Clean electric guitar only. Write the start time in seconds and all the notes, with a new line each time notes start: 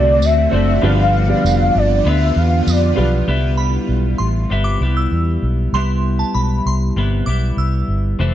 Already playing: D3 A3 C4 F#4
0.52 A3 C4 F#4
0.82 G2 D3 F3 B3 F4
2.05 D3 B3 F4
2.96 F3 B3 F4
3.28 G3 B3 E4
4.50 C3 G3 B3 E4
4.82 G3 B3 E4
5.75 G3 B3 E4
6.96 C3 G3 B3 E4
7.27 G3 B3 E4
8.19 C3 E3 A3 C4